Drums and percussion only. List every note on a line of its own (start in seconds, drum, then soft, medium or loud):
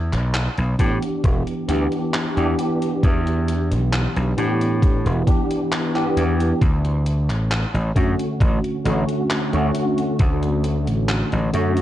0.13 clap soft
0.13 closed hi-hat medium
0.34 clap loud
0.34 closed hi-hat medium
0.58 closed hi-hat soft
0.79 kick medium
0.79 closed hi-hat medium
1.03 closed hi-hat medium
1.24 kick loud
1.24 closed hi-hat medium
1.47 closed hi-hat soft
1.69 closed hi-hat medium
1.92 closed hi-hat medium
2.14 clap loud
2.14 closed hi-hat medium
2.37 closed hi-hat soft
2.59 closed hi-hat medium
2.82 closed hi-hat medium
3.03 kick loud
3.03 closed hi-hat medium
3.27 closed hi-hat soft
3.48 closed hi-hat medium
3.72 closed hi-hat medium
3.93 clap loud
3.93 closed hi-hat medium
4.16 closed hi-hat soft
4.38 closed hi-hat medium
4.61 closed hi-hat medium
4.82 kick loud
4.82 closed hi-hat medium
5.06 closed hi-hat soft
5.27 kick loud
5.27 closed hi-hat medium
5.51 closed hi-hat medium
5.72 clap loud
5.72 closed hi-hat medium
5.96 clap soft
5.96 closed hi-hat soft
6.17 closed hi-hat medium
6.40 closed hi-hat medium
6.61 kick loud
6.61 closed hi-hat medium
6.85 closed hi-hat soft
7.06 closed hi-hat medium
7.30 clap soft
7.30 closed hi-hat soft
7.51 clap loud
7.51 closed hi-hat medium
7.75 closed hi-hat soft
7.96 kick medium
7.96 closed hi-hat medium
8.19 closed hi-hat medium
8.40 kick loud
8.40 closed hi-hat medium
8.64 closed hi-hat soft
8.86 closed hi-hat medium
9.09 closed hi-hat medium
9.30 clap loud
9.30 closed hi-hat medium
9.53 closed hi-hat soft
9.75 closed hi-hat medium
9.98 closed hi-hat medium
10.19 kick loud
10.19 closed hi-hat medium
10.43 closed hi-hat soft
10.64 closed hi-hat medium
10.87 closed hi-hat soft
11.09 clap loud
11.09 closed hi-hat medium
11.32 closed hi-hat soft
11.54 closed hi-hat medium
11.77 closed hi-hat medium